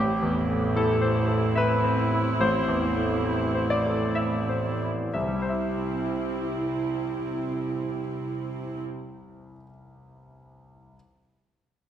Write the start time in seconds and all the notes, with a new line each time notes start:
Already playing: A1 A2 C4 E4 G4
0.22 E2
0.48 A3
0.76 E4 A4
1.02 C5
1.28 A4
1.55 B4 E5
1.84 C4
2.13 E4
2.40 A1 C5
2.68 E2
2.96 A3
3.25 E4
3.55 C5
3.70 D5
3.86 A4
4.15 E5
4.49 C5
4.83 E4
5.14 C2 C3 C4 E4 E5
5.21 C3
5.28 G3
5.35 E4
5.42 C5
5.49 E5